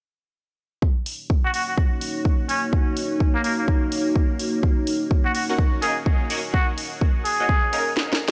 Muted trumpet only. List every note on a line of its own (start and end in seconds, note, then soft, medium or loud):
1.45 1.52 F#4 medium
1.54 1.63 F#4 medium
1.68 1.74 F#4 medium
2.49 2.62 C#4 medium
3.35 3.42 A#3 medium
3.44 3.54 A#3 medium
3.59 3.65 A#3 medium
5.25 5.33 F#4 medium
5.35 5.44 F#4 medium
5.49 5.55 F#4 medium
5.82 5.96 G#4 medium
6.54 6.67 F#4 medium
7.25 7.93 G#4 medium